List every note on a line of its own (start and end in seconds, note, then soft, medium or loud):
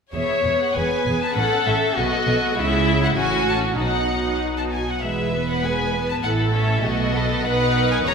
0.13 0.22 E1 soft
0.13 0.23 E2 soft
0.13 0.44 B3 soft
0.13 0.45 G#4 soft
0.13 0.72 C#5 medium
0.13 0.57 E5 medium
0.45 0.54 E1 soft
0.45 0.53 E2 soft
0.45 0.75 B3 soft
0.45 0.76 G#4 soft
0.62 0.77 F#5 medium
0.75 0.85 E1 soft
0.75 0.84 E2 soft
0.75 1.06 B3 soft
0.75 1.06 G#4 soft
0.75 1.37 B4 soft
0.75 1.21 G#5 medium
1.07 1.15 E1 soft
1.07 1.15 E2 soft
1.07 1.36 B3 soft
1.07 1.36 G#4 soft
1.21 1.37 A5 medium
1.36 1.45 A1 medium
1.36 1.45 A2 soft
1.36 1.65 C#4 soft
1.36 1.66 A4 soft
1.36 1.98 A4 medium
1.36 1.66 F#5 medium
1.67 1.75 A1 soft
1.67 1.75 A2 medium
1.67 1.96 C#4 soft
1.67 1.96 A4 soft
1.67 1.97 E5 medium
1.97 2.06 B1 medium
1.97 2.06 B2 medium
1.97 2.26 B3 medium
1.97 2.58 F#4 medium
1.97 2.27 A4 soft
1.97 2.58 D#5 medium
2.27 2.36 B1 medium
2.27 2.36 B2 medium
2.27 2.57 B3 soft
2.27 2.57 A4 medium
2.58 3.14 C#2 medium
2.58 3.14 C#3 medium
2.58 3.14 G#3 medium
2.58 3.18 E4 medium
2.58 3.14 G#4 medium
2.58 3.02 E5 medium
3.04 3.10 F#5 medium
3.17 3.79 A1 medium
3.17 3.79 A2 medium
3.17 3.79 C#4 soft
3.17 3.77 F#4 medium
3.17 3.78 F#4 medium
3.17 3.48 G#5 medium
3.49 3.57 A5 medium
3.78 4.80 B1 soft
3.78 4.81 B2 soft
3.78 4.69 D#4 soft
3.78 4.83 D#4 soft
3.78 4.81 F#4 soft
3.78 4.39 F#5 medium
4.58 4.64 A5 medium
4.72 4.87 G#5 medium
4.89 5.04 F#5 soft
5.01 6.20 E1 soft
5.01 6.20 E2 soft
5.01 5.32 G#3 soft
5.01 5.32 G#4 soft
5.01 6.19 B4 soft
5.01 5.49 E5 medium
5.33 5.64 B3 soft
5.33 5.64 B4 soft
5.49 5.64 F#5 medium
5.64 5.94 G#3 soft
5.64 5.95 G#4 soft
5.64 6.09 G#5 medium
5.95 6.25 B3 soft
5.95 6.25 B4 soft
6.09 6.15 A5 medium
6.23 6.84 A1 soft
6.23 6.84 A2 soft
6.23 6.53 E4 soft
6.23 6.83 A4 soft
6.23 6.53 A4 soft
6.23 6.31 F#5 medium
6.54 6.85 C#4 soft
6.54 6.84 C#5 soft
6.54 6.84 E5 medium
6.83 7.44 B1 medium
6.83 7.44 B2 medium
6.83 7.13 A3 soft
6.83 7.15 F#4 soft
6.83 7.13 A4 soft
6.83 7.45 D#5 medium
7.14 7.45 B3 soft
7.14 7.45 A4 medium
7.14 7.44 B4 soft
7.44 8.03 B1 medium
7.44 8.03 B2 medium
7.44 8.03 D#4 medium
7.44 8.05 B4 medium
7.44 7.53 B4 medium
7.44 7.91 F#5 medium
7.76 8.06 A#4 medium
7.92 7.98 G#5 medium
8.06 8.14 E1 medium
8.06 8.14 E2 medium
8.06 8.14 C#4 medium
8.06 8.14 G#4 medium
8.06 8.14 C#5 medium
8.06 8.14 A#5 medium